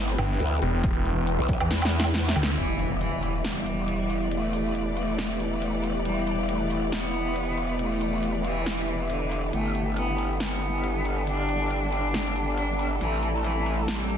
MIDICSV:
0, 0, Header, 1, 9, 480
1, 0, Start_track
1, 0, Key_signature, 1, "minor"
1, 0, Tempo, 434783
1, 924, Time_signature, 4, 2, 24, 8
1, 15651, End_track
2, 0, Start_track
2, 0, Title_t, "Ambient pad"
2, 0, Program_c, 0, 92
2, 0, Note_on_c, 0, 64, 78
2, 0, Note_on_c, 0, 71, 90
2, 0, Note_on_c, 0, 88, 86
2, 2830, Note_off_c, 0, 64, 0
2, 2844, Note_off_c, 0, 71, 0
2, 2844, Note_on_c, 0, 64, 81
2, 3310, Note_on_c, 0, 71, 75
2, 3606, Note_off_c, 0, 88, 0
2, 4209, Note_on_c, 0, 79, 71
2, 4256, Note_on_c, 0, 76, 71
2, 10523, Note_on_c, 0, 67, 66
2, 10933, Note_on_c, 0, 74, 81
2, 10949, Note_on_c, 0, 81, 74
2, 11299, Note_off_c, 0, 76, 0
2, 11766, Note_off_c, 0, 79, 0
2, 11795, Note_off_c, 0, 71, 0
2, 12066, Note_off_c, 0, 64, 0
2, 12256, Note_on_c, 0, 83, 74
2, 14364, Note_on_c, 0, 69, 82
2, 14365, Note_off_c, 0, 83, 0
2, 14787, Note_on_c, 0, 76, 79
2, 15061, Note_off_c, 0, 67, 0
2, 15222, Note_off_c, 0, 74, 0
2, 15454, Note_on_c, 0, 84, 67
2, 15651, Note_off_c, 0, 69, 0
2, 15651, Note_off_c, 0, 76, 0
2, 15651, Note_off_c, 0, 81, 0
2, 15651, Note_off_c, 0, 84, 0
2, 15651, End_track
3, 0, Start_track
3, 0, Title_t, "String section"
3, 0, Program_c, 1, 48
3, 0, Note_on_c, 1, 52, 82
3, 0, Note_on_c, 1, 59, 75
3, 0, Note_on_c, 1, 71, 75
3, 0, Note_on_c, 1, 79, 94
3, 2800, Note_off_c, 1, 52, 0
3, 2800, Note_off_c, 1, 59, 0
3, 2800, Note_off_c, 1, 71, 0
3, 2825, Note_off_c, 1, 79, 0
3, 2844, Note_on_c, 1, 52, 74
3, 2844, Note_on_c, 1, 59, 67
3, 2844, Note_on_c, 1, 67, 66
3, 2844, Note_on_c, 1, 74, 82
3, 10480, Note_off_c, 1, 52, 0
3, 10480, Note_off_c, 1, 74, 0
3, 10524, Note_on_c, 1, 50, 76
3, 10524, Note_on_c, 1, 69, 85
3, 14320, Note_off_c, 1, 59, 0
3, 14320, Note_off_c, 1, 67, 0
3, 14325, Note_off_c, 1, 50, 0
3, 14363, Note_on_c, 1, 64, 70
3, 14364, Note_on_c, 1, 48, 80
3, 14364, Note_on_c, 1, 57, 72
3, 15651, Note_off_c, 1, 48, 0
3, 15651, Note_off_c, 1, 57, 0
3, 15651, Note_off_c, 1, 64, 0
3, 15651, Note_off_c, 1, 69, 0
3, 15651, End_track
4, 0, Start_track
4, 0, Title_t, "Cello"
4, 0, Program_c, 2, 42
4, 2844, Note_on_c, 2, 52, 84
4, 3102, Note_off_c, 2, 52, 0
4, 3324, Note_on_c, 2, 52, 85
4, 3582, Note_off_c, 2, 52, 0
4, 3804, Note_on_c, 2, 55, 89
4, 4674, Note_off_c, 2, 55, 0
4, 4764, Note_on_c, 2, 57, 84
4, 5394, Note_off_c, 2, 57, 0
4, 5484, Note_on_c, 2, 57, 89
4, 6114, Note_off_c, 2, 57, 0
4, 6204, Note_on_c, 2, 57, 78
4, 6463, Note_off_c, 2, 57, 0
4, 6684, Note_on_c, 2, 55, 90
4, 6942, Note_off_c, 2, 55, 0
4, 7165, Note_on_c, 2, 57, 84
4, 7423, Note_off_c, 2, 57, 0
4, 7644, Note_on_c, 2, 59, 90
4, 8514, Note_off_c, 2, 59, 0
4, 8604, Note_on_c, 2, 57, 88
4, 9234, Note_off_c, 2, 57, 0
4, 9324, Note_on_c, 2, 52, 90
4, 9954, Note_off_c, 2, 52, 0
4, 10044, Note_on_c, 2, 50, 77
4, 10302, Note_off_c, 2, 50, 0
4, 10524, Note_on_c, 2, 57, 90
4, 10783, Note_off_c, 2, 57, 0
4, 11005, Note_on_c, 2, 59, 79
4, 11263, Note_off_c, 2, 59, 0
4, 11485, Note_on_c, 2, 59, 86
4, 12354, Note_off_c, 2, 59, 0
4, 12444, Note_on_c, 2, 62, 90
4, 13074, Note_off_c, 2, 62, 0
4, 13164, Note_on_c, 2, 62, 92
4, 13794, Note_off_c, 2, 62, 0
4, 13883, Note_on_c, 2, 62, 82
4, 14142, Note_off_c, 2, 62, 0
4, 14364, Note_on_c, 2, 52, 88
4, 14623, Note_off_c, 2, 52, 0
4, 14844, Note_on_c, 2, 52, 88
4, 15102, Note_off_c, 2, 52, 0
4, 15323, Note_on_c, 2, 55, 97
4, 15651, Note_off_c, 2, 55, 0
4, 15651, End_track
5, 0, Start_track
5, 0, Title_t, "Wobble bass"
5, 0, Program_c, 3, 39
5, 0, Note_on_c, 3, 31, 102
5, 186, Note_off_c, 3, 31, 0
5, 444, Note_on_c, 3, 38, 96
5, 666, Note_off_c, 3, 38, 0
5, 1531, Note_on_c, 3, 35, 94
5, 1751, Note_off_c, 3, 35, 0
5, 1884, Note_on_c, 3, 40, 98
5, 2586, Note_off_c, 3, 40, 0
5, 2844, Note_on_c, 3, 28, 78
5, 10501, Note_off_c, 3, 28, 0
5, 10524, Note_on_c, 3, 31, 80
5, 14341, Note_off_c, 3, 31, 0
5, 14364, Note_on_c, 3, 33, 82
5, 15651, Note_off_c, 3, 33, 0
5, 15651, End_track
6, 0, Start_track
6, 0, Title_t, "Detuned saw bass"
6, 0, Program_c, 4, 39
6, 204, Note_on_c, 4, 31, 98
6, 426, Note_off_c, 4, 31, 0
6, 684, Note_on_c, 4, 28, 100
6, 791, Note_off_c, 4, 28, 0
6, 812, Note_on_c, 4, 28, 99
6, 1511, Note_off_c, 4, 28, 0
6, 1772, Note_on_c, 4, 40, 95
6, 1866, Note_off_c, 4, 40, 0
6, 2604, Note_on_c, 4, 38, 100
6, 2826, Note_off_c, 4, 38, 0
6, 15651, End_track
7, 0, Start_track
7, 0, Title_t, "Impact"
7, 0, Program_c, 5, 103
7, 2844, Note_on_c, 5, 60, 62
7, 4764, Note_off_c, 5, 60, 0
7, 15651, End_track
8, 0, Start_track
8, 0, Title_t, "Riser"
8, 0, Program_c, 6, 103
8, 14364, Note_on_c, 6, 60, 67
8, 15651, Note_off_c, 6, 60, 0
8, 15651, End_track
9, 0, Start_track
9, 0, Title_t, "Drums"
9, 204, Note_on_c, 9, 42, 53
9, 204, Note_on_c, 9, 77, 55
9, 315, Note_off_c, 9, 42, 0
9, 315, Note_off_c, 9, 77, 0
9, 444, Note_on_c, 9, 42, 81
9, 555, Note_off_c, 9, 42, 0
9, 684, Note_on_c, 9, 42, 53
9, 795, Note_off_c, 9, 42, 0
9, 924, Note_on_c, 9, 36, 120
9, 924, Note_on_c, 9, 42, 81
9, 1034, Note_off_c, 9, 36, 0
9, 1035, Note_off_c, 9, 42, 0
9, 1164, Note_on_c, 9, 42, 55
9, 1275, Note_off_c, 9, 42, 0
9, 1404, Note_on_c, 9, 42, 80
9, 1514, Note_off_c, 9, 42, 0
9, 1644, Note_on_c, 9, 36, 60
9, 1644, Note_on_c, 9, 42, 54
9, 1754, Note_off_c, 9, 36, 0
9, 1755, Note_off_c, 9, 42, 0
9, 1772, Note_on_c, 9, 77, 67
9, 1882, Note_off_c, 9, 77, 0
9, 1884, Note_on_c, 9, 38, 68
9, 1884, Note_on_c, 9, 42, 79
9, 1994, Note_off_c, 9, 38, 0
9, 1994, Note_off_c, 9, 42, 0
9, 2012, Note_on_c, 9, 77, 62
9, 2044, Note_on_c, 9, 38, 73
9, 2122, Note_off_c, 9, 77, 0
9, 2124, Note_on_c, 9, 42, 55
9, 2155, Note_off_c, 9, 38, 0
9, 2204, Note_on_c, 9, 38, 83
9, 2234, Note_off_c, 9, 42, 0
9, 2251, Note_on_c, 9, 77, 54
9, 2314, Note_off_c, 9, 38, 0
9, 2361, Note_off_c, 9, 77, 0
9, 2363, Note_on_c, 9, 38, 93
9, 2363, Note_on_c, 9, 42, 82
9, 2474, Note_off_c, 9, 38, 0
9, 2474, Note_off_c, 9, 42, 0
9, 2523, Note_on_c, 9, 38, 96
9, 2603, Note_on_c, 9, 42, 54
9, 2603, Note_on_c, 9, 77, 64
9, 2633, Note_off_c, 9, 38, 0
9, 2683, Note_on_c, 9, 38, 106
9, 2714, Note_off_c, 9, 42, 0
9, 2714, Note_off_c, 9, 77, 0
9, 2794, Note_off_c, 9, 38, 0
9, 2843, Note_on_c, 9, 42, 71
9, 2954, Note_off_c, 9, 42, 0
9, 3083, Note_on_c, 9, 42, 50
9, 3194, Note_off_c, 9, 42, 0
9, 3323, Note_on_c, 9, 42, 76
9, 3434, Note_off_c, 9, 42, 0
9, 3564, Note_on_c, 9, 42, 49
9, 3674, Note_off_c, 9, 42, 0
9, 3804, Note_on_c, 9, 38, 100
9, 3804, Note_on_c, 9, 42, 71
9, 3914, Note_off_c, 9, 38, 0
9, 3914, Note_off_c, 9, 42, 0
9, 4044, Note_on_c, 9, 42, 50
9, 4154, Note_off_c, 9, 42, 0
9, 4284, Note_on_c, 9, 42, 77
9, 4394, Note_off_c, 9, 42, 0
9, 4524, Note_on_c, 9, 42, 49
9, 4634, Note_off_c, 9, 42, 0
9, 4764, Note_on_c, 9, 42, 73
9, 4875, Note_off_c, 9, 42, 0
9, 5004, Note_on_c, 9, 42, 49
9, 5115, Note_off_c, 9, 42, 0
9, 5244, Note_on_c, 9, 42, 74
9, 5354, Note_off_c, 9, 42, 0
9, 5484, Note_on_c, 9, 42, 48
9, 5595, Note_off_c, 9, 42, 0
9, 5724, Note_on_c, 9, 38, 103
9, 5724, Note_on_c, 9, 42, 72
9, 5834, Note_off_c, 9, 38, 0
9, 5834, Note_off_c, 9, 42, 0
9, 5964, Note_on_c, 9, 42, 51
9, 6075, Note_off_c, 9, 42, 0
9, 6204, Note_on_c, 9, 42, 80
9, 6314, Note_off_c, 9, 42, 0
9, 6444, Note_on_c, 9, 42, 49
9, 6554, Note_off_c, 9, 42, 0
9, 6684, Note_on_c, 9, 42, 70
9, 6795, Note_off_c, 9, 42, 0
9, 6925, Note_on_c, 9, 42, 51
9, 7035, Note_off_c, 9, 42, 0
9, 7164, Note_on_c, 9, 42, 71
9, 7275, Note_off_c, 9, 42, 0
9, 7404, Note_on_c, 9, 42, 49
9, 7515, Note_off_c, 9, 42, 0
9, 7644, Note_on_c, 9, 38, 108
9, 7644, Note_on_c, 9, 42, 72
9, 7754, Note_off_c, 9, 38, 0
9, 7754, Note_off_c, 9, 42, 0
9, 7884, Note_on_c, 9, 42, 48
9, 7994, Note_off_c, 9, 42, 0
9, 8124, Note_on_c, 9, 42, 73
9, 8234, Note_off_c, 9, 42, 0
9, 8364, Note_on_c, 9, 42, 47
9, 8474, Note_off_c, 9, 42, 0
9, 8604, Note_on_c, 9, 42, 70
9, 8714, Note_off_c, 9, 42, 0
9, 8844, Note_on_c, 9, 42, 49
9, 8954, Note_off_c, 9, 42, 0
9, 9084, Note_on_c, 9, 42, 69
9, 9195, Note_off_c, 9, 42, 0
9, 9324, Note_on_c, 9, 42, 45
9, 9435, Note_off_c, 9, 42, 0
9, 9565, Note_on_c, 9, 38, 104
9, 9565, Note_on_c, 9, 42, 68
9, 9675, Note_off_c, 9, 38, 0
9, 9675, Note_off_c, 9, 42, 0
9, 9805, Note_on_c, 9, 42, 47
9, 9915, Note_off_c, 9, 42, 0
9, 10044, Note_on_c, 9, 42, 72
9, 10155, Note_off_c, 9, 42, 0
9, 10284, Note_on_c, 9, 42, 48
9, 10395, Note_off_c, 9, 42, 0
9, 10524, Note_on_c, 9, 42, 67
9, 10635, Note_off_c, 9, 42, 0
9, 10764, Note_on_c, 9, 42, 45
9, 10875, Note_off_c, 9, 42, 0
9, 11004, Note_on_c, 9, 42, 69
9, 11115, Note_off_c, 9, 42, 0
9, 11244, Note_on_c, 9, 42, 46
9, 11355, Note_off_c, 9, 42, 0
9, 11485, Note_on_c, 9, 38, 107
9, 11485, Note_on_c, 9, 42, 67
9, 11595, Note_off_c, 9, 38, 0
9, 11595, Note_off_c, 9, 42, 0
9, 11724, Note_on_c, 9, 42, 44
9, 11834, Note_off_c, 9, 42, 0
9, 11964, Note_on_c, 9, 42, 70
9, 12074, Note_off_c, 9, 42, 0
9, 12204, Note_on_c, 9, 42, 47
9, 12315, Note_off_c, 9, 42, 0
9, 12444, Note_on_c, 9, 42, 68
9, 12555, Note_off_c, 9, 42, 0
9, 12684, Note_on_c, 9, 42, 48
9, 12795, Note_off_c, 9, 42, 0
9, 12924, Note_on_c, 9, 42, 70
9, 13034, Note_off_c, 9, 42, 0
9, 13164, Note_on_c, 9, 42, 45
9, 13274, Note_off_c, 9, 42, 0
9, 13404, Note_on_c, 9, 38, 100
9, 13404, Note_on_c, 9, 42, 65
9, 13514, Note_off_c, 9, 38, 0
9, 13514, Note_off_c, 9, 42, 0
9, 13644, Note_on_c, 9, 42, 45
9, 13754, Note_off_c, 9, 42, 0
9, 13884, Note_on_c, 9, 42, 70
9, 13994, Note_off_c, 9, 42, 0
9, 14124, Note_on_c, 9, 42, 45
9, 14235, Note_off_c, 9, 42, 0
9, 14364, Note_on_c, 9, 42, 72
9, 14474, Note_off_c, 9, 42, 0
9, 14604, Note_on_c, 9, 42, 46
9, 14714, Note_off_c, 9, 42, 0
9, 14844, Note_on_c, 9, 42, 70
9, 14954, Note_off_c, 9, 42, 0
9, 15084, Note_on_c, 9, 42, 47
9, 15194, Note_off_c, 9, 42, 0
9, 15324, Note_on_c, 9, 38, 98
9, 15324, Note_on_c, 9, 42, 67
9, 15435, Note_off_c, 9, 38, 0
9, 15435, Note_off_c, 9, 42, 0
9, 15565, Note_on_c, 9, 42, 48
9, 15651, Note_off_c, 9, 42, 0
9, 15651, End_track
0, 0, End_of_file